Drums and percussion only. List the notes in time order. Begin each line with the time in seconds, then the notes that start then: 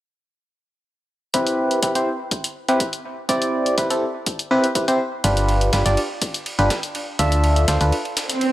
1.34 kick, closed hi-hat
1.47 closed hi-hat
1.71 closed hi-hat
1.83 kick, closed hi-hat
1.95 closed hi-hat
2.31 kick, closed hi-hat
2.44 closed hi-hat
2.69 closed hi-hat
2.80 kick, closed hi-hat
2.93 closed hi-hat
3.29 kick, closed hi-hat
3.42 closed hi-hat
3.66 closed hi-hat
3.78 kick, closed hi-hat
3.90 closed hi-hat
4.26 kick, closed hi-hat
4.39 closed hi-hat
4.64 closed hi-hat
4.75 kick, closed hi-hat
4.88 closed hi-hat
5.24 kick, closed hi-hat, ride
5.37 closed hi-hat
5.49 ride
5.61 closed hi-hat, ride
5.73 kick, snare, closed hi-hat, ride
5.86 snare, closed hi-hat
5.97 ride
6.22 kick, closed hi-hat, ride
6.34 closed hi-hat
6.46 ride
6.59 closed hi-hat
6.70 kick, snare, closed hi-hat, ride
6.83 closed hi-hat
6.95 ride
7.19 kick, closed hi-hat, ride
7.32 closed hi-hat
7.44 ride
7.56 closed hi-hat
7.68 kick, snare, closed hi-hat, ride
7.81 closed hi-hat
7.92 ride
8.05 ride
8.17 snare, closed hi-hat, ride
8.29 snare, closed hi-hat
8.41 ride